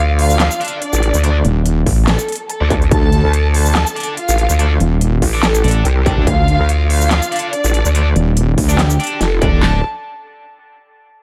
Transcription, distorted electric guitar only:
0.60 D4 A4 D5
1.23 D4 A4 D5
2.61 D4 A4 D5
3.96 D4 A4 D5
4.59 D4 A4 D5
5.33 D4 A4 D5
5.64 D4 A4 D5
6.06 D4 A4 D5
7.32 D4 A4 D5
7.95 D4 A4 D5
8.69 D4 A4 D5
9.00 D4 A4 D5
9.42 D4 A4 D5
9.62 D4 A4 D5

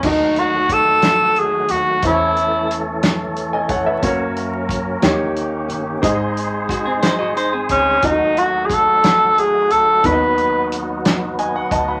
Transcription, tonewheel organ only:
0.03 D#3 F#3 A3 F#4
2.04 E3 A3 C#4 A4
4.03 F#3 A#3 A#4
5.03 D#3 G4
6.04 G#3 D#4 G#4 C5
8.02 F#3 A3 F#4
10.03 B3 F#4

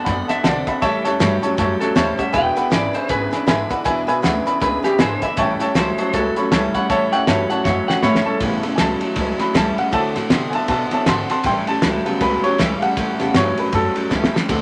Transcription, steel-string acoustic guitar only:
0.06 A3 C4 F#4 A4
0.30 C4 F#4 A4
0.44 D3 A3 C4 F#4 A4
0.67 C4 F#4 A4
0.82 A2 E3 G3 C#4 G4 A4
1.05 G3 C#4 G4 A4
1.19 A2 E3 G3 C#4 G4 A4
1.42 G3 C#4 G4 A4
1.57 G3 C#4 G4 A4
1.80 G3 C#4 G4 A4
1.95 A2 E3 G3 C#4 G4 A4
2.17 G3 C#4 G4 A4
2.32 E3 G#3 D4 E4 B4
2.55 D4 E4 B4
2.70 E3 G#3 D4 E4 B4
2.93 D4 E4 B4
3.08 G#3 D4 E4 B4
3.31 D4 E4 B4
3.46 E3 G#3 D4 E4 B4
3.69 D4 E4 B4
3.84 E3 G#3 D4 E4 B4
4.07 D4 E4 B4
4.22 E3 G#3 D4 E4 B4
4.46 D4 E4 B4
4.60 G#3 D4 E4 B4
4.83 D4 E4 B4
4.98 E3 G#3 D4 E4 B4
5.21 D4 E4 B4
5.36 A2 E3 G3 C#4 E4 A4
5.59 G3 C#4 E4 A4
5.74 A2 E3 G3 C#4 E4 A4
5.98 G3 C#4 E4 A4
6.13 G3 C#4 E4 A4
6.37 G3 C#4 E4 A4
6.52 A2 E3 G3 C#4 E4 A4
6.74 G3 C#4 E4 A4
6.90 A2 E3 G3 C#4 E4 A4
7.12 G3 C#4 E4 A4
7.27 A2 E3 G3 C#4 E4 A4
7.50 G3 C#4 E4 A4
7.65 G3 C#4 E4 A4
7.88 G3 C#4 E4 A4
8.03 A2 E3 G3 C#4 E4 A4
8.25 G3 C#4 E4 A4
8.41 A2 E3 G3 C#4 E4 A4
8.63 G3 C#4 E4 A4
8.78 A2 E3 G3 C#4 E4 A4
9.01 G3 C#4 E4 A4
9.16 G3 C#4 E4 A4
9.38 G3 C#4 E4 A4
9.54 A2 E3 G3 C#4 E4 A4
9.77 G3 C#4 E4 A4
9.92 D3 A3 C4 F#4 A4
10.15 C4 F#4 A4
10.30 D3 A3 C4 F#4 A4
10.53 C4 F#4 A4
10.68 A3 C4 F#4 A4
10.91 C4 F#4 A4
11.06 D3 A3 C4 F#4 A4
11.29 C4 F#4 A4
11.45 A2 E3 G3 C#4 G4 A4
11.68 G3 C#4 G4 A4
11.83 A2 E3 G3 C#4 G4 A4
12.05 G3 C#4 G4 A4
12.20 G3 C#4 G4 A4
12.44 G3 C#4 G4 A4
12.58 A2 E3 G3 C#4 G4 A4
12.82 G3 C#4 G4 A4
12.97 A2 E3 G3 C#4 G4 A4
13.20 G3 C#4 G4 A4
13.35 A2 E3 G3 C#4 G4 A4
13.57 G3 C#4 G4 A4
13.73 G3 C#4 G4 A4
13.96 G3 C#4 G4 A4
14.10 A2 E3 G3 C#4 G4 A4
14.34 G3 C#4 G4 A4
14.49 D3 A3 C4 F#4 A4

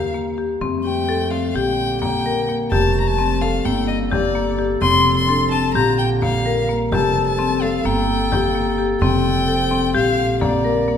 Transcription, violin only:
Already playing: F5
0.84 G5
1.31 F5
1.55 G5
2.01 G5
2.71 A5
3.00 A#5
3.07 A5
3.41 F5
3.65 G5
3.88 D#5
4.11 D5
4.82 C6
5.17 C6
5.51 A5
5.74 A#5
5.99 G5
6.22 F5
6.93 A5
7.27 A5
7.62 F5
7.86 G5
9.01 G5
9.95 F5
10.42 D5

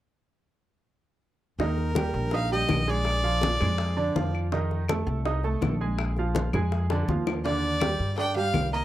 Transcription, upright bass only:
1.59 D#2
2.14 A#1
2.69 A#1
3.61 F2
4.15 F2
5.07 C2
5.61 A#1
6.53 F2
7.08 D#2
8.00 G2
8.54 C2

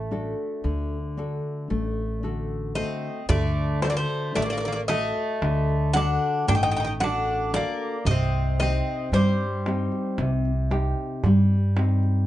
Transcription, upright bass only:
Already playing: A1
0.64 D2
1.70 A1
3.29 D2
4.36 A1
5.42 D2
6.48 A1
8.05 C2
9.12 G2
10.18 C2
11.24 G2

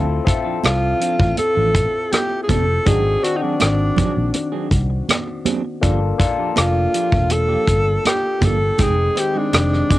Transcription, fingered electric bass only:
Already playing: D2
0.64 C2
1.20 A1
1.39 muted fingered electric bass stroke
1.57 A1
2.49 F1
2.87 G#1
3.62 G#1
4.17 A#1
4.72 C2
5.83 G1
6.58 F1
7.12 E1
7.68 G1
8.42 G1
8.79 F1
9.53 F1

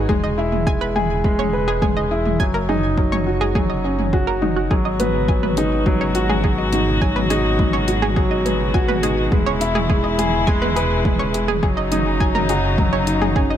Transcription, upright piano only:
Already playing: F#3 B3 D#4 F#4
0.09 G#3
0.38 E4
0.67 G#3
0.96 G#4
1.24 G#3
1.53 B4
1.82 G#3
2.11 E4
2.40 F#3
2.69 D#4
2.98 F#3
3.27 F#4
3.56 F#3
3.84 C#4
4.13 F#4
4.42 D#4
4.71 F#3
5.00 B3
5.29 F#3
5.58 D#4
5.86 F#3
6.15 F#4
6.44 F#3
6.73 D#4
7.02 F#3
7.30 D#4
7.59 F#3
7.88 F#4
8.17 F#3
8.46 B3
8.75 F#4
9.04 D#4
9.32 G#3
9.61 E4
9.90 G#3
10.19 G#4
10.47 G#3
10.76 B4
11.05 G#3
11.34 G#4
11.63 F#3
11.92 D#4
12.21 F#3
12.50 F#4
12.79 F#3
13.07 D#4
13.36 C#4

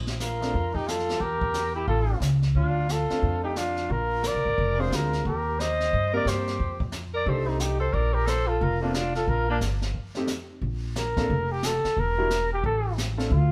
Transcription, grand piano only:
0.41 F3 A3 C4 D4
3.10 A3 C4 D4 F4
4.78 G#3 C4 D4 F4
6.13 A#3 C4 F4 G4
7.26 A3 D4 D#4 G4
8.82 A3 C4 D4 F4
10.16 F2 A3 C4 D#4 G4
11.17 A#3 C4 D4 F4 A4
12.18 G3 D4 E4 F#4 A#4
13.17 A3 C4 D4 F4 A4

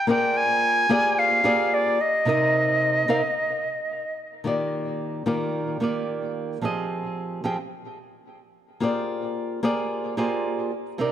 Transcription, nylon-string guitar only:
0.07 A#3 F4 G#4 A#4 C5 D5
0.89 A#3 F4 G4 G#4 C5 D5
1.44 A#3 F4 G4 G#4 C5 D5
2.25 C3 C4 D#4 A#4 D#5
3.08 C3 C4 D#4 A#4 F5
4.44 D#3 A#3 F4 G4 D5
5.26 D#3 A#3 F4 G4 D5
5.80 D#3 A#3 F4 G4 D5
6.61 F3 C4 G4 G#4 D#5
7.44 F3 C4 G4 G#4 G5
8.80 A#3 F4 G4 G#4 C5 D5
9.63 A#3 F4 G4 G#4 C5 D5
10.17 A#3 F4 G4 G#4 C5 D5
10.98 C3 C4 D#4 A#4 D5

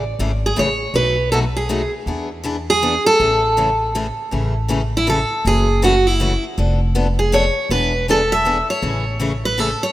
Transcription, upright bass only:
Already playing: A1
0.19 G#1
0.57 A1
0.94 B1
2.06 E2
3.20 A1
4.32 A1
5.45 F#1
6.58 F1
7.69 E1
8.82 A1

